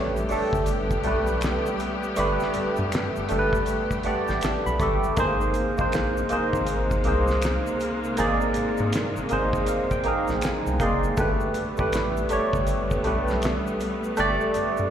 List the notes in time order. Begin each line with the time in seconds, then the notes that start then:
Already playing: A1 G3 A3 B3 D4 G4 B4 C#5
0.17 shaker
0.29 G1 A3 D4 G4 A4, open hi-hat, shaker
0.53 G1, kick, shaker
0.66 closed hi-hat, shaker
0.91 kick, shaker
1.04 B1 A3 D4 G4 B4, closed hi-hat
1.27 shaker
1.41 finger snap, snare, closed hi-hat, shaker
1.66 shaker
1.79 closed hi-hat, shaker
2.03 shaker
2.16 G1 A3 D4 G4 B4, closed hi-hat, shaker
2.40 snare, shaker
2.54 G2, closed hi-hat, shaker
2.76 G2, shaker
2.92 finger snap, snare, closed hi-hat, shaker
3.16 G1, shaker
3.29 G1 A3 D4 G4 A4, closed hi-hat, shaker
3.39 B4
3.53 kick, shaker
3.66 closed hi-hat, shaker
3.91 kick, shaker
4.03 A1 A3 D4 G4 D5 F#5, closed hi-hat
4.28 A1 G5, snare, shaker
4.41 A5, finger snap, snare, closed hi-hat, shaker
4.66 B1 B5, shaker
4.79 G1 A3 D4 G4 A4, kick, closed hi-hat, shaker
5.04 shaker
5.17 G#1 C3 G#3 A#3 D#4 G#4 C5, kick, closed hi-hat, shaker
5.41 shaker
5.54 closed hi-hat, shaker
5.78 A#1 A#3 D#4 G#4 C5, kick, shaker
5.92 finger snap, snare, closed hi-hat, shaker
6.17 shaker
6.29 G#1 A#3 D#4 G#4 C5, closed hi-hat, shaker
6.53 G#1, kick, shaker
6.66 closed hi-hat, shaker
6.91 kick, shaker
7.04 C2 A#3 D#4 G#4, closed hi-hat
7.08 C5
7.28 snare, shaker
7.42 finger snap, snare, closed hi-hat, shaker
7.67 shaker
7.80 closed hi-hat, shaker
8.04 shaker
8.17 G#1 A#3 D#4 G#4 D5, closed hi-hat, shaker
8.41 shaker
8.54 G#2, closed hi-hat, shaker
8.77 G#2, shaker
8.93 finger snap, snare, closed hi-hat, shaker
9.17 G#1, shaker
9.29 G#1 A#3 D#4 G#4 C5 D#5, closed hi-hat, shaker
9.53 kick, shaker
9.66 F5, closed hi-hat, shaker
9.91 G5, kick, shaker
10.04 A#1 A#3 D#4 G#4 A#5, closed hi-hat
10.08 A#4
10.28 A#1, snare, shaker
10.41 G#5, finger snap, snare, closed hi-hat, shaker
10.67 C2, shaker
10.79 F#1 A#3 D#4 G#4 D5 C6, kick, closed hi-hat, shaker
11.04 shaker
11.17 G1 G3 A3 B3 D4 G4 B4, kick, closed hi-hat, shaker
11.40 shaker
11.54 closed hi-hat, shaker
11.77 A1 A3 D4 G4 B4, kick, shaker
11.93 finger snap, snare, closed hi-hat, shaker
12.17 shaker
12.29 G1 A3 D4 G4 C#5, closed hi-hat, shaker
12.53 G1, kick, shaker
12.67 closed hi-hat, shaker
12.91 kick, shaker
13.04 B1 A3 D4 G4 B4, closed hi-hat
13.28 snare, shaker
13.42 finger snap, snare, closed hi-hat, shaker
13.67 shaker
13.80 closed hi-hat, shaker
14.04 shaker
14.17 G1 A3 D4 G4 D5, closed hi-hat, shaker
14.41 shaker
14.54 G2, closed hi-hat, shaker
14.77 G2, shaker